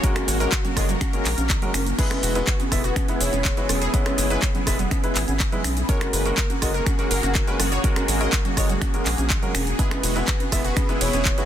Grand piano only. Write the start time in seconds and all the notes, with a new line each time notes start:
0.03 G#3 C#4 F#4 A#4
0.40 G#3 C#4 F#4 A#4
0.77 G#3 C#4 F#4 D#5
1.13 G#3 C#4 F#4 A#4
1.62 G#3 C#4 F#4 A#4
1.99 G#3 B3 E4 B4
2.35 G#3 B3 E4 B4
2.72 G#3 B3 E4 E5
3.09 G#3 B3 E4 B4
3.57 G#3 B3 E4 B4
3.94 G#3 B3 E4 B4
4.30 G#3 B3 E4 B4
4.67 G#3 B3 E4 E5
5.04 G#3 B3 E4 B4
5.52 G#3 B3 E4 B4
5.89 G#3 C#4 F#4 A#4
6.26 G#3 C#4 F#4 A#4
6.62 G#3 C#4 F#4 D#5
6.99 G#3 C#4 F#4 A#4
7.47 G#3 C#4 F#4 A#4
7.84 G#3 C#4 F#4 A#4
8.21 G#3 C#4 F#4 A#4
8.57 G#3 C#4 F#4 D#5
8.94 G#3 C#4 F#4 A#4
9.43 G#3 C#4 F#4 A#4
9.79 G#3 B3 E4 B4
10.16 G#3 B3 E4 B4
10.52 G#3 B3 E4 E5
10.89 G#3 B3 E4 B4
11.38 G#3 B3 E4 B4